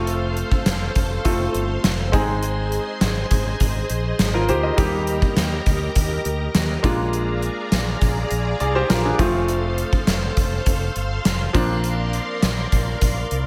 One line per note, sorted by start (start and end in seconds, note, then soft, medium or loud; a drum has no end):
0.00 0.42 F1 medium
0.00 1.21 A3 medium
0.00 1.22 C4 medium
0.00 1.22 F4 medium
0.00 1.23 A4 medium
0.00 2.11 A4 medium
0.00 2.11 C5 medium
0.00 2.10 F5 medium
0.00 4.74 C6 medium
0.07 closed hi-hat medium
0.37 closed hi-hat medium
0.51 kick medium
0.66 0.87 F1 medium
0.66 snare loud
0.66 closed hi-hat medium
0.95 1.17 F1 medium
0.95 kick medium
0.95 closed hi-hat medium
1.24 1.46 F1 medium
1.24 2.13 A3 medium
1.24 2.11 C4 medium
1.24 2.13 F4 medium
1.24 2.14 A4 medium
1.24 kick medium
1.24 closed hi-hat medium
1.54 1.76 G1 medium
1.54 closed hi-hat medium
1.84 2.13 F1 medium
1.84 snare loud
1.84 closed hi-hat medium
2.12 2.77 G#1 medium
2.12 4.44 G#3 medium
2.12 4.44 C4 medium
2.12 4.45 D#4 medium
2.12 4.75 G#4 medium
2.12 3.87 G#4 medium
2.12 4.75 C5 medium
2.12 6.80 D#5 medium
2.12 kick medium
2.12 closed hi-hat medium
2.43 closed hi-hat medium
2.72 closed hi-hat medium
3.01 3.23 G#1 medium
3.01 snare loud
3.01 closed hi-hat medium
3.31 3.52 G#1 medium
3.31 kick medium
3.31 closed hi-hat medium
3.60 3.82 G#1 medium
3.60 kick medium
3.60 closed hi-hat medium
3.90 4.11 A#1 medium
3.90 closed hi-hat medium
4.19 4.50 G#1 medium
4.19 snare loud
4.19 closed hi-hat medium
4.34 4.48 F4 medium
4.34 4.48 A#4 medium
4.49 4.70 D2 medium
4.49 4.63 G4 medium
4.49 4.63 C5 medium
4.49 closed hi-hat medium
4.63 4.92 A#4 soft
4.63 4.91 D#5 medium
4.77 5.20 D#2 medium
4.77 6.79 G3 medium
4.77 6.80 A#3 medium
4.77 6.80 D#4 medium
4.77 6.82 G4 medium
4.77 6.81 G4 medium
4.77 6.82 A#4 medium
4.77 6.82 A#5 medium
4.77 kick loud
4.77 closed hi-hat medium
5.07 closed hi-hat medium
5.22 kick medium
5.37 5.58 D#2 medium
5.37 snare loud
5.37 closed hi-hat medium
5.66 5.88 D2 medium
5.66 kick medium
5.66 closed hi-hat medium
5.95 6.17 D#2 medium
5.95 kick medium
5.95 closed hi-hat medium
6.25 6.46 D2 medium
6.25 closed hi-hat medium
6.55 6.76 D#2 medium
6.55 snare loud
6.55 closed hi-hat medium
6.83 7.47 A#1 medium
6.83 9.15 G#3 medium
6.83 9.15 A#3 medium
6.83 8.57 D4 medium
6.83 8.57 F4 medium
6.83 9.17 G#4 medium
6.83 9.17 D5 medium
6.83 13.47 F5 medium
6.83 9.17 A#5 medium
6.83 kick loud
6.83 closed hi-hat medium
7.13 closed hi-hat medium
7.42 closed hi-hat medium
7.72 7.93 A#1 medium
7.72 snare loud
7.72 closed hi-hat medium
8.01 8.23 A#1 medium
8.01 kick medium
8.01 closed hi-hat medium
8.31 8.52 A#1 medium
8.31 closed hi-hat medium
8.60 8.82 C2 medium
8.60 8.75 G#4 medium
8.60 8.74 D5 medium
8.60 closed hi-hat medium
8.75 8.89 G4 medium
8.75 8.89 C5 medium
8.90 9.11 A#1 medium
8.90 9.04 F4 medium
8.90 9.04 A#4 medium
8.90 snare loud
8.90 closed hi-hat medium
9.05 9.33 D4 medium
9.05 9.33 G#4 medium
9.18 9.83 F1 medium
9.18 11.50 F3 medium
9.18 11.50 A3 medium
9.18 11.51 C4 medium
9.18 11.51 F4 medium
9.18 11.52 A4 medium
9.18 11.52 C5 medium
9.18 13.47 C6 medium
9.18 kick loud
9.18 closed hi-hat medium
9.48 closed hi-hat medium
9.78 closed hi-hat medium
9.93 kick medium
10.07 10.29 F1 medium
10.07 snare loud
10.07 closed hi-hat medium
10.37 10.58 F1 medium
10.37 kick medium
10.37 closed hi-hat medium
10.66 10.88 F1 medium
10.66 kick medium
10.66 closed hi-hat medium
10.96 11.17 G1 medium
10.96 closed hi-hat medium
11.25 11.46 F1 medium
11.25 snare loud
11.25 closed hi-hat medium
11.53 12.18 A#1 medium
11.53 13.47 F3 medium
11.53 13.47 A#3 medium
11.53 13.47 C4 medium
11.53 13.47 D4 medium
11.53 13.47 A#4 medium
11.53 13.47 D5 medium
11.53 kick loud
11.53 closed hi-hat medium
11.84 closed hi-hat medium
12.13 closed hi-hat medium
12.43 12.64 A#1 medium
12.43 snare loud
12.43 closed hi-hat medium
12.72 12.93 A#1 medium
12.72 kick medium
12.72 closed hi-hat medium
13.01 13.23 A#1 medium
13.01 kick medium
13.01 closed hi-hat medium
13.31 13.47 C2 medium
13.31 closed hi-hat medium